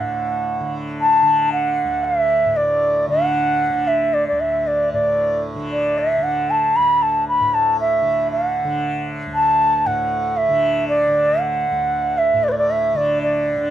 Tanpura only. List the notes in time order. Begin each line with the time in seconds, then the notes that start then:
Already playing: D2 D3
0.00 A2
0.60 D3
1.22 D3
1.84 D2
2.46 A2
3.08 D3
3.70 D3
4.32 D2
4.93 A2
5.55 D3
6.18 D3
6.79 D2
7.40 A2
8.02 D3
8.64 D3
9.26 D2
9.86 A2
10.49 D3
11.09 D3
11.71 D2
12.34 A2
12.94 D3
13.56 D3